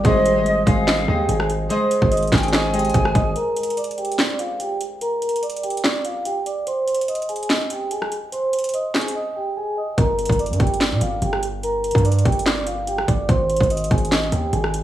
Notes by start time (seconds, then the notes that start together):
Already playing: A#4 D5
0.03 G#1 D#2 C3 G#3 G#4 C5 D#5 C6, kick, closed hi-hat
0.25 C5 C6, closed hi-hat
0.36 G#3 G#4 C5 D#5
0.46 D#5 D#6, closed hi-hat
0.66 G#1 G#3 G#4 C5 D#5 F5 G#5, kick, closed hi-hat
0.87 D#5 D#6, snare, clap, closed hi-hat
1.07 D#2 G#3 G4 G#4 C5 D#5 G5
1.29 G#1 G#4 G#5, closed hi-hat
1.40 cross-stick
1.50 closed hi-hat
1.69 G#3 G#4 C5 D#5 C6, closed hi-hat
1.91 C5 C6, closed hi-hat
2.02 G#1, kick
2.12 D#5 D#6, closed hi-hat
2.17 closed hi-hat
2.23 closed hi-hat
2.27 closed hi-hat
2.32 G#1 G#4 G5 G#5, kick, snare, clap, closed hi-hat
2.38 closed hi-hat
2.43 closed hi-hat
2.48 closed hi-hat
2.53 D#5 G#5 D#6, cross-stick, snare, clap, closed hi-hat
2.73 G#3 G4 G#4 C5 D#5 G5, closed hi-hat
2.79 closed hi-hat
2.85 closed hi-hat
2.90 closed hi-hat
2.94 G#1 G#4 G#5, kick, closed hi-hat
3.05 cross-stick
3.15 G#1 D#5 D#6, kick, closed hi-hat
3.36 A#4 A#5, closed hi-hat
3.56 A#4 A#5, closed hi-hat
3.63 closed hi-hat
3.70 closed hi-hat
3.77 D5 D6, closed hi-hat
3.84 closed hi-hat
3.91 closed hi-hat
3.98 G4 G5, closed hi-hat
4.05 closed hi-hat
4.12 closed hi-hat
4.19 D5 D6, snare, clap, closed hi-hat
4.39 F4 F5, closed hi-hat
4.60 G4 G5, closed hi-hat
4.81 closed hi-hat
5.01 A#4 A#5, closed hi-hat
5.22 A#4 A#5, closed hi-hat
5.29 closed hi-hat
5.36 closed hi-hat
5.43 D5, closed hi-hat
5.50 closed hi-hat
5.57 closed hi-hat
5.63 G4 G5, closed hi-hat
5.70 closed hi-hat
5.77 closed hi-hat
5.84 D5 D6, snare, clap, closed hi-hat
6.05 F4 F5, closed hi-hat
6.25 G4 G5, closed hi-hat
6.46 D5 D6, closed hi-hat
6.67 C5 C6, closed hi-hat
6.87 C5 C6, closed hi-hat
6.94 closed hi-hat
7.01 closed hi-hat
7.08 D#5 D#6, closed hi-hat
7.15 closed hi-hat
7.22 closed hi-hat
7.29 G#4 G#5, closed hi-hat
7.36 closed hi-hat
7.43 closed hi-hat
7.50 D#5 D#6, snare, clap, closed hi-hat
7.70 G4 G5, closed hi-hat
7.91 G#4 G#5, closed hi-hat
8.02 cross-stick
8.12 closed hi-hat
8.32 C5 C6, closed hi-hat
8.53 C5, closed hi-hat
8.59 closed hi-hat
8.64 closed hi-hat
8.69 closed hi-hat
8.74 D#5 D#6, closed hi-hat
8.94 G#4 G#5, snare, clap, closed hi-hat, open hi-hat
9.01 closed hi-hat
9.08 closed hi-hat
9.15 D#5 D#6
9.36 G4 G5
9.57 G#4 G#5
9.77 D#5 D#6
9.98 G1 A#4 A#5, kick, closed hi-hat
10.19 closed hi-hat
10.25 closed hi-hat
10.30 G1, kick, closed hi-hat
10.39 D5 D6, closed hi-hat
10.46 closed hi-hat
10.50 G2, closed hi-hat
10.60 G1 G4 G5, kick, closed hi-hat
10.67 closed hi-hat
10.74 closed hi-hat
10.81 D5 D6, snare, clap, closed hi-hat
10.92 A#2
11.01 G1 F4 F5, closed hi-hat
11.22 G1 G4 G5, closed hi-hat
11.33 cross-stick
11.43 closed hi-hat
11.63 A#4 A#5, closed hi-hat
11.84 A#4 A#5, closed hi-hat
11.91 closed hi-hat
11.95 G2, kick, closed hi-hat
12.05 D5 D6, closed hi-hat
12.12 closed hi-hat
12.19 closed hi-hat
12.25 G1 G4 G5, kick, closed hi-hat
12.32 closed hi-hat
12.39 closed hi-hat
12.46 D5 D6, snare, clap, closed hi-hat
12.67 F4 F5, closed hi-hat
12.87 G4 G5, closed hi-hat
12.98 cross-stick
13.08 G1 D5 D6, kick, closed hi-hat
13.29 G#1 C5 C6, kick, closed hi-hat
13.49 C5 C6, closed hi-hat
13.56 closed hi-hat
13.61 G#1, kick, closed hi-hat
13.70 D#5 D#6, closed hi-hat
13.77 closed hi-hat
13.84 closed hi-hat
13.91 G#1 G#4 G#5, kick, closed hi-hat
13.98 closed hi-hat
14.05 closed hi-hat
14.12 D#5 D#6, snare, clap, closed hi-hat
14.32 D#2 G4 G5, closed hi-hat
14.53 G#1 G#4 G#5, closed hi-hat
14.64 cross-stick
14.74 closed hi-hat